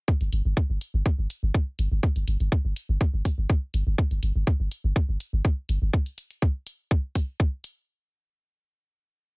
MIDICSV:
0, 0, Header, 1, 3, 480
1, 0, Start_track
1, 0, Tempo, 487805
1, 80, Time_signature, 4, 2, 24, 8
1, 9214, End_track
2, 0, Start_track
2, 0, Title_t, "Sub bass"
2, 0, Program_c, 0, 38
2, 205, Note_on_c, 0, 31, 95
2, 285, Note_off_c, 0, 31, 0
2, 320, Note_on_c, 0, 31, 76
2, 406, Note_off_c, 0, 31, 0
2, 445, Note_on_c, 0, 31, 77
2, 525, Note_off_c, 0, 31, 0
2, 685, Note_on_c, 0, 31, 97
2, 765, Note_off_c, 0, 31, 0
2, 925, Note_on_c, 0, 31, 97
2, 1004, Note_off_c, 0, 31, 0
2, 1165, Note_on_c, 0, 31, 87
2, 1244, Note_off_c, 0, 31, 0
2, 1405, Note_on_c, 0, 31, 75
2, 1484, Note_off_c, 0, 31, 0
2, 1760, Note_on_c, 0, 31, 83
2, 1846, Note_off_c, 0, 31, 0
2, 1884, Note_on_c, 0, 31, 94
2, 1964, Note_off_c, 0, 31, 0
2, 2125, Note_on_c, 0, 31, 97
2, 2204, Note_off_c, 0, 31, 0
2, 2240, Note_on_c, 0, 31, 78
2, 2326, Note_off_c, 0, 31, 0
2, 2365, Note_on_c, 0, 31, 80
2, 2444, Note_off_c, 0, 31, 0
2, 2604, Note_on_c, 0, 31, 95
2, 2684, Note_off_c, 0, 31, 0
2, 2845, Note_on_c, 0, 31, 96
2, 2924, Note_off_c, 0, 31, 0
2, 3085, Note_on_c, 0, 31, 94
2, 3165, Note_off_c, 0, 31, 0
2, 3325, Note_on_c, 0, 31, 78
2, 3405, Note_off_c, 0, 31, 0
2, 3680, Note_on_c, 0, 31, 83
2, 3766, Note_off_c, 0, 31, 0
2, 3805, Note_on_c, 0, 31, 97
2, 3884, Note_off_c, 0, 31, 0
2, 4045, Note_on_c, 0, 31, 99
2, 4124, Note_off_c, 0, 31, 0
2, 4160, Note_on_c, 0, 31, 81
2, 4247, Note_off_c, 0, 31, 0
2, 4285, Note_on_c, 0, 31, 81
2, 4365, Note_off_c, 0, 31, 0
2, 4525, Note_on_c, 0, 31, 99
2, 4604, Note_off_c, 0, 31, 0
2, 4765, Note_on_c, 0, 31, 98
2, 4844, Note_off_c, 0, 31, 0
2, 5005, Note_on_c, 0, 31, 90
2, 5085, Note_off_c, 0, 31, 0
2, 5245, Note_on_c, 0, 31, 82
2, 5325, Note_off_c, 0, 31, 0
2, 5600, Note_on_c, 0, 31, 79
2, 5686, Note_off_c, 0, 31, 0
2, 5725, Note_on_c, 0, 31, 95
2, 5804, Note_off_c, 0, 31, 0
2, 9214, End_track
3, 0, Start_track
3, 0, Title_t, "Drums"
3, 80, Note_on_c, 9, 36, 107
3, 178, Note_off_c, 9, 36, 0
3, 205, Note_on_c, 9, 42, 32
3, 304, Note_off_c, 9, 42, 0
3, 320, Note_on_c, 9, 42, 83
3, 418, Note_off_c, 9, 42, 0
3, 560, Note_on_c, 9, 36, 111
3, 658, Note_off_c, 9, 36, 0
3, 800, Note_on_c, 9, 42, 86
3, 898, Note_off_c, 9, 42, 0
3, 1040, Note_on_c, 9, 36, 108
3, 1138, Note_off_c, 9, 36, 0
3, 1280, Note_on_c, 9, 42, 85
3, 1379, Note_off_c, 9, 42, 0
3, 1520, Note_on_c, 9, 36, 110
3, 1618, Note_off_c, 9, 36, 0
3, 1760, Note_on_c, 9, 42, 85
3, 1858, Note_off_c, 9, 42, 0
3, 2000, Note_on_c, 9, 36, 114
3, 2098, Note_off_c, 9, 36, 0
3, 2125, Note_on_c, 9, 42, 36
3, 2223, Note_off_c, 9, 42, 0
3, 2239, Note_on_c, 9, 42, 90
3, 2338, Note_off_c, 9, 42, 0
3, 2365, Note_on_c, 9, 42, 35
3, 2463, Note_off_c, 9, 42, 0
3, 2480, Note_on_c, 9, 36, 117
3, 2578, Note_off_c, 9, 36, 0
3, 2720, Note_on_c, 9, 42, 91
3, 2818, Note_off_c, 9, 42, 0
3, 2960, Note_on_c, 9, 36, 112
3, 3058, Note_off_c, 9, 36, 0
3, 3200, Note_on_c, 9, 36, 61
3, 3200, Note_on_c, 9, 42, 89
3, 3298, Note_off_c, 9, 36, 0
3, 3298, Note_off_c, 9, 42, 0
3, 3440, Note_on_c, 9, 36, 113
3, 3538, Note_off_c, 9, 36, 0
3, 3680, Note_on_c, 9, 42, 88
3, 3778, Note_off_c, 9, 42, 0
3, 3920, Note_on_c, 9, 36, 118
3, 4018, Note_off_c, 9, 36, 0
3, 4045, Note_on_c, 9, 42, 36
3, 4143, Note_off_c, 9, 42, 0
3, 4160, Note_on_c, 9, 42, 91
3, 4258, Note_off_c, 9, 42, 0
3, 4400, Note_on_c, 9, 36, 120
3, 4498, Note_off_c, 9, 36, 0
3, 4640, Note_on_c, 9, 42, 93
3, 4738, Note_off_c, 9, 42, 0
3, 4880, Note_on_c, 9, 36, 117
3, 4978, Note_off_c, 9, 36, 0
3, 5120, Note_on_c, 9, 42, 91
3, 5218, Note_off_c, 9, 42, 0
3, 5360, Note_on_c, 9, 36, 122
3, 5458, Note_off_c, 9, 36, 0
3, 5600, Note_on_c, 9, 42, 91
3, 5698, Note_off_c, 9, 42, 0
3, 5840, Note_on_c, 9, 36, 117
3, 5938, Note_off_c, 9, 36, 0
3, 5965, Note_on_c, 9, 42, 38
3, 6063, Note_off_c, 9, 42, 0
3, 6080, Note_on_c, 9, 42, 90
3, 6178, Note_off_c, 9, 42, 0
3, 6205, Note_on_c, 9, 42, 36
3, 6303, Note_off_c, 9, 42, 0
3, 6320, Note_on_c, 9, 36, 122
3, 6418, Note_off_c, 9, 36, 0
3, 6559, Note_on_c, 9, 42, 95
3, 6658, Note_off_c, 9, 42, 0
3, 6800, Note_on_c, 9, 36, 119
3, 6898, Note_off_c, 9, 36, 0
3, 7039, Note_on_c, 9, 42, 95
3, 7040, Note_on_c, 9, 36, 63
3, 7138, Note_off_c, 9, 36, 0
3, 7138, Note_off_c, 9, 42, 0
3, 7280, Note_on_c, 9, 36, 120
3, 7378, Note_off_c, 9, 36, 0
3, 7519, Note_on_c, 9, 42, 96
3, 7618, Note_off_c, 9, 42, 0
3, 9214, End_track
0, 0, End_of_file